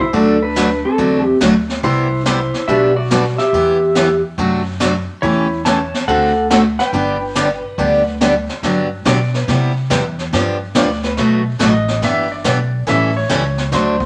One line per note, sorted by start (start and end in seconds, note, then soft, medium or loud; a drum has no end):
0.00 0.13 E4 medium
0.00 0.14 C5 medium
0.13 0.81 D2 medium
0.13 0.36 D3 medium
0.13 0.36 F#3 medium
0.13 0.36 A3 medium
0.13 0.36 D4 medium
0.13 0.40 D4 medium
0.13 0.36 F#4 medium
0.13 0.43 A4 medium
0.13 brush sweep soft
0.13 kick soft
0.43 0.82 D4 medium
0.43 0.86 B4 medium
0.56 0.68 D3 medium
0.56 0.68 F#3 medium
0.56 0.68 A3 medium
0.56 0.68 D4 medium
0.56 0.68 F#4 medium
0.56 snare medium
0.56 hi-hat pedal medium
0.85 1.38 C4 medium
0.85 1.25 A4 medium
0.98 1.34 E2 medium
0.98 1.21 D3 medium
0.98 1.21 F#3 medium
0.98 1.21 A3 medium
0.98 1.21 D4 medium
0.98 1.21 F#4 medium
0.98 brush sweep soft
0.98 kick soft
1.25 1.37 G4 medium
1.41 1.77 D2 medium
1.41 1.53 D3 medium
1.41 1.53 F#3 medium
1.41 1.53 A3 medium
1.41 1.53 D4 medium
1.41 1.53 F#4 medium
1.41 snare medium
1.41 hi-hat pedal medium
1.69 snare soft
1.83 2.51 C2 medium
1.83 2.06 C3 medium
1.83 2.06 G3 medium
1.83 2.06 B3 medium
1.83 2.06 E4 medium
1.83 2.23 E4 medium
1.83 2.06 G4 medium
1.83 2.25 C5 medium
1.83 brush sweep soft
1.83 kick soft
2.26 2.38 C3 medium
2.26 2.38 G3 medium
2.26 2.38 B3 medium
2.26 2.65 E4 medium
2.26 2.38 E4 medium
2.26 2.38 G4 medium
2.26 2.70 C5 medium
2.26 snare medium
2.26 hi-hat pedal medium
2.54 snare soft
2.68 3.36 B1 medium
2.68 2.91 B2 medium
2.68 2.91 G3 medium
2.68 2.91 B3 medium
2.68 2.91 D4 medium
2.68 2.91 F#4 medium
2.68 2.95 G4 medium
2.68 2.94 E5 loud
2.68 brush sweep medium
2.68 kick soft
2.96 3.36 F#4 medium
2.96 3.38 D5 loud
3.10 3.23 B2 medium
3.10 3.23 G3 medium
3.10 3.23 B3 medium
3.10 3.23 D4 medium
3.10 3.23 F#4 medium
3.10 snare medium
3.10 hi-hat pedal medium
3.38 4.20 G4 medium
3.38 4.20 E5 medium
3.38 snare soft
3.53 4.21 E2 medium
3.53 3.76 E3 medium
3.53 3.76 B3 medium
3.53 3.76 E4 medium
3.53 3.77 G4 medium
3.53 brush sweep soft
3.53 kick soft
3.95 4.07 E3 medium
3.95 4.08 B3 medium
3.95 4.08 E4 medium
3.95 4.08 G4 medium
3.95 snare medium
3.95 hi-hat pedal medium
4.38 5.06 F#2 medium
4.38 4.61 C3 medium
4.38 4.61 F#3 medium
4.38 4.61 A3 medium
4.38 4.61 D4 medium
4.38 4.61 F#4 medium
4.38 brush sweep soft
4.38 kick soft
4.80 4.92 C3 medium
4.80 4.93 F#3 medium
4.80 4.92 A3 medium
4.80 4.92 D4 medium
4.80 4.93 F#4 medium
4.80 snare medium
4.80 hi-hat pedal medium
5.22 5.91 E2 medium
5.22 5.46 E3 medium
5.22 5.46 A3 medium
5.22 5.46 C#4 medium
5.22 5.63 E4 medium
5.22 5.46 G4 medium
5.22 5.64 C#5 loud
5.22 brush sweep soft
5.22 kick soft
5.65 5.78 E3 medium
5.65 5.78 A3 medium
5.65 5.78 C#4 medium
5.65 5.78 G4 medium
5.65 6.05 C#5 medium
5.65 6.08 A5 loud
5.65 snare medium
5.65 hi-hat pedal medium
5.94 snare soft
6.08 6.76 D2 medium
6.08 6.31 D3 medium
6.08 6.31 A3 medium
6.08 6.31 C4 medium
6.08 6.31 F#4 medium
6.08 6.48 A4 medium
6.08 6.31 A4 medium
6.08 6.47 F#5 loud
6.08 brush sweep soft
6.08 kick soft
6.50 6.63 D3 medium
6.50 6.63 A3 medium
6.50 6.63 C4 medium
6.50 6.63 F#4 medium
6.50 6.59 A4 medium
6.50 6.63 A4 medium
6.50 6.58 F#5 medium
6.50 snare medium
6.50 hi-hat pedal medium
6.79 8.17 B4 medium
6.79 7.68 G5 medium
6.79 snare soft
6.93 7.61 G1 medium
6.93 7.16 D3 medium
6.93 7.16 G3 medium
6.93 7.16 B3 medium
6.93 7.16 D4 medium
6.93 7.16 G4 medium
6.93 brush sweep soft
6.93 kick soft
7.35 7.47 D3 medium
7.35 7.48 G3 medium
7.35 7.48 B3 medium
7.35 7.48 D4 medium
7.35 7.48 G4 medium
7.35 snare medium
7.35 hi-hat pedal medium
7.68 8.17 F#5 medium
7.78 8.46 D2 medium
7.78 8.01 D3 medium
7.78 8.01 G3 medium
7.78 8.01 B3 medium
7.78 8.01 D4 medium
7.78 8.02 G4 medium
7.78 brush sweep medium
7.78 kick soft
8.21 8.33 D3 medium
8.21 8.33 G3 medium
8.21 8.33 B3 medium
8.21 8.33 D4 medium
8.21 8.33 G4 medium
8.21 snare medium
8.21 hi-hat pedal medium
8.49 snare soft
8.63 9.04 G2 medium
8.63 8.86 D3 medium
8.63 8.86 F#3 medium
8.63 8.86 B3 medium
8.63 8.86 D4 medium
8.63 8.86 G4 medium
8.63 brush sweep soft
8.63 kick soft
8.63 snare soft
9.05 9.47 B2 medium
9.05 9.17 D3 medium
9.05 9.18 F#3 medium
9.05 9.18 B3 medium
9.05 9.18 D4 medium
9.05 9.18 G4 medium
9.05 9.34 D5 medium
9.05 kick soft
9.05 snare medium
9.05 hi-hat pedal medium
9.34 9.48 B4 medium
9.34 snare soft
9.48 9.89 C3 medium
9.48 9.71 C3 medium
9.48 9.71 G3 medium
9.48 9.71 B3 medium
9.48 9.71 E4 medium
9.48 9.71 G4 medium
9.48 brush sweep medium
9.48 kick soft
9.48 snare soft
9.90 10.31 E2 medium
9.90 10.02 C3 medium
9.90 10.02 G3 medium
9.90 10.02 B3 medium
9.90 10.03 E4 medium
9.90 10.03 G4 medium
9.90 kick soft
9.90 snare medium
9.90 hi-hat pedal medium
10.19 snare soft
10.33 10.74 G2 medium
10.33 10.56 D3 medium
10.33 10.56 F3 medium
10.33 10.56 B3 medium
10.33 10.56 D4 medium
10.33 10.56 G4 medium
10.33 brush sweep soft
10.33 kick soft
10.33 snare soft
10.75 11.16 D2 medium
10.75 10.87 D3 medium
10.75 10.87 F3 medium
10.75 10.87 B3 medium
10.75 10.88 D4 medium
10.75 10.88 G4 medium
10.75 11.04 D5 medium
10.75 kick soft
10.75 snare medium
10.75 hi-hat pedal medium
11.03 11.13 B4 medium
11.03 snare soft
11.17 11.59 B1 medium
11.17 11.41 B2 medium
11.17 11.41 F#3 medium
11.17 11.41 A3 medium
11.17 11.41 D#4 medium
11.17 11.41 F#4 medium
11.17 brush sweep soft
11.17 kick soft
11.17 snare soft
11.59 12.01 A1 medium
11.59 11.72 B2 medium
11.59 11.72 F#3 medium
11.59 11.72 A3 medium
11.59 11.72 D#4 medium
11.59 11.73 F#4 medium
11.59 12.01 D#5 medium
11.59 kick soft
11.59 snare medium
11.59 hi-hat pedal medium
11.88 snare soft
12.02 12.44 G1 medium
12.02 12.25 E3 medium
12.02 12.25 B3 medium
12.02 12.26 D4 medium
12.02 12.26 G4 medium
12.02 12.31 E5 loud
12.02 brush sweep soft
12.02 kick soft
12.02 snare soft
12.32 12.84 D5 medium
12.44 12.86 B1 medium
12.44 12.57 E3 medium
12.44 12.57 B3 medium
12.44 12.57 D4 medium
12.44 12.57 G4 medium
12.44 kick soft
12.44 snare medium
12.44 hi-hat pedal medium
12.87 13.28 A1 medium
12.87 13.10 E3 medium
12.87 13.10 G3 medium
12.87 13.10 C#4 medium
12.87 13.10 E4 medium
12.87 13.10 A4 medium
12.87 13.16 E5 medium
12.87 brush sweep medium
12.87 kick soft
12.87 snare soft
13.17 13.69 C#5 medium
13.29 13.71 C#2 medium
13.29 13.42 E3 medium
13.29 13.42 G3 medium
13.29 13.42 C#4 medium
13.29 13.42 E4 medium
13.29 13.42 A4 medium
13.29 kick soft
13.29 snare medium
13.29 hi-hat pedal medium
13.58 snare soft
13.72 14.06 D2 medium
13.72 13.95 D3 medium
13.72 13.95 F#3 medium
13.72 13.95 A3 medium
13.72 13.95 D4 medium
13.72 13.96 F#4 medium
13.72 14.06 C5 medium
13.72 brush sweep medium
13.72 kick soft
13.72 snare soft
14.00 kick soft